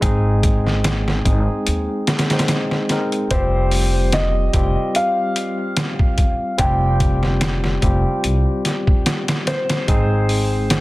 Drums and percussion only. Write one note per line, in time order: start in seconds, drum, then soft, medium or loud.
0.02 kick medium
0.02 closed hi-hat medium
0.43 kick medium
0.43 closed hi-hat medium
0.67 snare soft
0.84 snare loud
0.84 closed hi-hat medium
1.08 snare medium
1.25 kick medium
1.25 closed hi-hat medium
1.67 closed hi-hat medium
2.07 snare medium
2.07 closed hi-hat medium
2.19 snare medium
2.19 closed hi-hat medium
2.30 snare medium
2.30 closed hi-hat medium
2.39 snare medium
2.39 closed hi-hat medium
2.48 snare loud
2.48 closed hi-hat medium
2.71 snare soft
2.89 snare soft
2.89 closed hi-hat medium
3.12 closed hi-hat soft
3.31 kick medium
3.31 closed hi-hat medium
3.71 open hi-hat medium
4.12 snare loud
4.12 closed hi-hat medium
4.53 kick medium
4.53 closed hi-hat medium
4.95 closed hi-hat medium
5.36 closed hi-hat medium
5.77 snare loud
5.77 closed hi-hat medium
5.99 kick medium
6.18 kick medium
6.18 closed hi-hat medium
6.58 kick loud
6.58 closed hi-hat medium
7.00 kick medium
7.00 closed hi-hat medium
7.23 snare soft
7.41 snare loud
7.41 closed hi-hat medium
7.64 snare medium
7.82 kick medium
7.82 closed hi-hat medium
8.24 closed hi-hat medium
8.65 snare soft
8.65 closed hi-hat medium
8.87 kick medium
9.06 snare medium
9.06 closed hi-hat medium
9.28 snare loud
9.28 closed hi-hat medium
9.47 snare loud
9.47 closed hi-hat medium
9.70 snare loud
9.70 closed hi-hat medium
9.88 kick loud
9.88 closed hi-hat medium
10.29 open hi-hat medium
10.70 snare loud
10.70 closed hi-hat medium